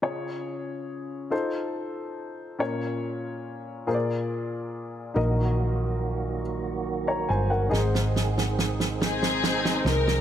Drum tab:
SD |------------|------------|------------|oooooooooooo|